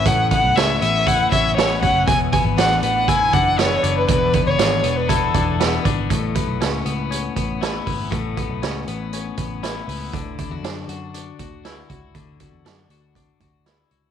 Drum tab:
HH |xxxxxxxx|xxxxxxxx|xxxxxxxx|xxxxxxxo|
SD |--o---o-|--o---o-|--o---o-|--o---o-|
BD |oo--oo-o|oo--oo--|oo--oo-o|oo---o-o|

HH |xxxxxxxo|xxxxxxxx|xxxxxxxx|
SD |--o---o-|--o---o-|--o---o-|
BD |oo---o--|oo---o-o|oo--oo--|